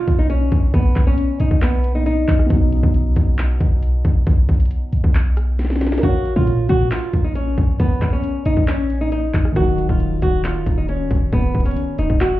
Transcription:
Already playing: B2 F#3 D#4 F4
0.08 B1, kick, closed hi-hat
0.19 D#4
0.30 C#4, closed hi-hat
0.52 B1, kick, closed hi-hat
0.74 B1 B3, kick, closed hi-hat
0.96 B1, kick, clap, closed hi-hat
1.07 C#4
1.18 closed hi-hat
1.40 B1 D#4, closed hi-hat
1.51 B1, kick
1.62 B3, clap, closed hi-hat
1.84 closed hi-hat
1.95 D#4
2.06 D#4, closed hi-hat
2.28 B1, kick, clap, closed hi-hat
2.39 cross-stick
2.46 B1 B2 F#3, kick, closed hi-hat
2.54 D#4
2.72 closed hi-hat
2.83 B1, kick
2.94 closed hi-hat
3.16 B1, kick, closed hi-hat
3.38 clap, closed hi-hat
3.60 B1, kick, closed hi-hat
3.83 closed hi-hat
4.05 B1, kick, closed hi-hat
4.27 B1, kick, closed hi-hat
4.49 B1, kick, closed hi-hat
4.54 closed hi-hat
4.60 closed hi-hat
4.65 closed hi-hat
4.71 closed hi-hat
4.93 B1, closed hi-hat
5.04 B1, kick
5.15 clap, closed hi-hat
5.37 cross-stick, closed hi-hat
5.59 snare, closed hi-hat
5.65 snare
5.70 snare
5.76 snare
5.81 snare, closed hi-hat
5.87 snare
5.92 snare
5.98 A#4, snare
6.03 A#1 F#4 F5, kick, closed hi-hat
6.07 C#5
6.25 closed hi-hat
6.36 A#2 F4, kick
6.47 closed hi-hat
6.69 A#2 F#4, kick, closed hi-hat
6.91 F4, clap, closed hi-hat
7.13 A#1, kick, closed hi-hat
7.24 D#4
7.35 C#4, closed hi-hat
7.58 A#1, kick, closed hi-hat
7.80 A#1 B3, kick, closed hi-hat
8.02 A#1, kick, clap, closed hi-hat
8.13 C#4
8.24 closed hi-hat
8.45 A#1 D#4, closed hi-hat
8.57 A#1, kick
8.68 C#4, clap, closed hi-hat
8.90 closed hi-hat
9.01 D#4
9.12 D#4, closed hi-hat
9.34 A#1, kick, clap, closed hi-hat
9.45 cross-stick
9.52 D#3 A#4, closed hi-hat
9.56 D#1 F#3 F#4, kick
9.78 closed hi-hat
9.89 D#1 F4, kick
10.00 closed hi-hat
10.22 D#1 F#4, kick, closed hi-hat
10.44 F4, clap, closed hi-hat
10.66 D#1, kick, closed hi-hat
10.78 D#4
10.88 C#4, closed hi-hat
11.11 D#1, kick, closed hi-hat
11.33 D#1 B3, kick, closed hi-hat
11.55 D#1, kick, closed hi-hat
11.60 closed hi-hat
11.65 C#4, closed hi-hat
11.71 closed hi-hat
11.77 closed hi-hat
11.98 D#1 D#4, closed hi-hat
12.10 D#1, kick
12.21 F#4, clap, closed hi-hat

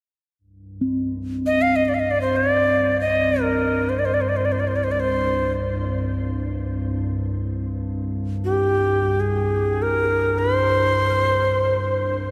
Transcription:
0.39 C2 G2
0.81 C4
1.46 D#5
1.62 F5
1.76 D#5
1.85 D5 D#5
1.94 F5
2.00 D#5
2.11 D5
2.21 C5
2.36 D5
3.01 D#5
3.41 A#4
3.89 C5
3.99 D5
4.05 C5
4.14 D5
4.21 C5
4.29 D5
4.36 C5
4.45 D5
4.52 C5
4.60 D5
4.67 C5
4.76 D5
4.84 C5
4.91 D5
5.00 C5
8.44 G4
9.20 G#4
9.82 A#4
10.38 C5

